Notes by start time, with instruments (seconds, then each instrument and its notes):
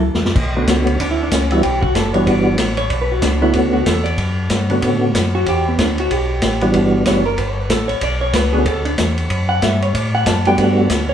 Already playing: tonewheel organ C#2
0.14 tonewheel organ E2, snare
0.24 tonewheel organ F#2, snare
0.35 tonewheel organ B1, kick, crash
0.56 tonewheel organ D3 A3 B3 C#4 F#4
0.67 tonewheel organ C#2, kick, snare, hi-hat pedal, ride
0.87 ride
0.99 tonewheel organ D2, hollow-body jazz guitar D4, kick, ride
1.11 hollow-body jazz guitar E4
1.23 hollow-body jazz guitar D4
1.31 tonewheel organ C#2, hollow-body jazz guitar C#4, kick, snare, hi-hat pedal, ride
1.51 tonewheel organ E3 G3 B3 D4 E4, hollow-body jazz guitar F#4, ride
1.63 tonewheel organ B1, hollow-body jazz guitar G4, kick, ride
1.81 hollow-body jazz guitar F#4, kick
1.95 tonewheel organ F#1, hollow-body jazz guitar A4, kick, snare, hi-hat pedal, ride
2.14 tonewheel organ E3 G3 B3 D4 F#4, hollow-body jazz guitar C#5, ride
2.26 tonewheel organ G1, hollow-body jazz guitar D5, kick, ride
2.58 tonewheel organ A1, kick, snare, hi-hat pedal, ride
2.77 hollow-body jazz guitar C#5, ride
2.90 tonewheel organ B1, hollow-body jazz guitar D5, kick, ride
3.02 hollow-body jazz guitar B4
3.12 hollow-body jazz guitar F#4
3.22 tonewheel organ C#2, hollow-body jazz guitar D4, kick, snare, hi-hat pedal, ride
3.41 tonewheel organ D3 A3 B3 C#4 F#4, hollow-body jazz guitar E4
3.53 tonewheel organ D2, hollow-body jazz guitar D4, kick, ride
3.73 hollow-body jazz guitar F#4
3.86 tonewheel organ E2, hollow-body jazz guitar A4, kick, snare, hi-hat pedal, ride
4.04 hollow-body jazz guitar D5, ride
4.18 tonewheel organ F#2, kick, ride
4.50 tonewheel organ G2, kick, snare, hi-hat pedal, ride
4.70 tonewheel organ D3 A3 B3 C#4 F#4, ride
4.82 tonewheel organ A2, kick, ride
5.14 tonewheel organ F#2, kick, snare, hi-hat pedal, ride
5.35 hollow-body jazz guitar F#4
5.46 tonewheel organ E2, hollow-body jazz guitar G4, kick, ride
5.68 hollow-body jazz guitar B3
5.78 tonewheel organ D2, hollow-body jazz guitar D4, kick, snare, hi-hat pedal, ride
5.98 hollow-body jazz guitar F#4, ride
6.10 tonewheel organ B1, hollow-body jazz guitar G4, kick, ride
6.42 tonewheel organ A1, kick, snare, hi-hat pedal, ride
6.61 tonewheel organ E3 G3 B3 D4 F#4, ride
6.74 tonewheel organ G1, kick, ride
7.05 tonewheel organ F#1 E3 G3 B3 D4 F#4, hollow-body jazz guitar C#5, kick, snare, hi-hat pedal, ride
7.26 hollow-body jazz guitar A#4
7.37 tonewheel organ G1, hollow-body jazz guitar B4, kick, ride
7.50 hollow-body jazz guitar C#5
7.61 hollow-body jazz guitar B4
7.69 tonewheel organ A1, hollow-body jazz guitar A4, kick, snare, hi-hat pedal, ride
7.88 tonewheel organ A1, hollow-body jazz guitar C#5, ride
8.01 tonewheel organ B1, hollow-body jazz guitar D5, kick, ride
8.21 hollow-body jazz guitar C#5
8.33 tonewheel organ C#2, hollow-body jazz guitar B4, kick, snare, hi-hat pedal, ride
8.53 tonewheel organ D3 A3 B3 C#4 F#4, hollow-body jazz guitar G#4
8.65 tonewheel organ D2, hollow-body jazz guitar A4, kick, ride
8.85 hollow-body jazz guitar D4, ride
8.98 tonewheel organ E2, kick, snare, hi-hat pedal, ride
9.18 ride
9.30 tonewheel organ F#2, kick, ride
9.49 hollow-body jazz guitar F#5
9.62 tonewheel organ G2, hollow-body jazz guitar E5, kick, snare, hi-hat pedal, ride
9.82 hollow-body jazz guitar C#5, ride
9.94 tonewheel organ A2, hollow-body jazz guitar D5, kick, ride
10.15 hollow-body jazz guitar F#5
10.26 tonewheel organ F#2, hollow-body jazz guitar A5, kick, snare, hi-hat pedal, ride
10.45 tonewheel organ G3 A3 B3 D4 F#4, hollow-body jazz guitar G5, ride
10.58 tonewheel organ G2, hollow-body jazz guitar F#5, kick, ride
10.90 tonewheel organ D2, kick, snare, hi-hat pedal, ride
11.09 hollow-body jazz guitar C#5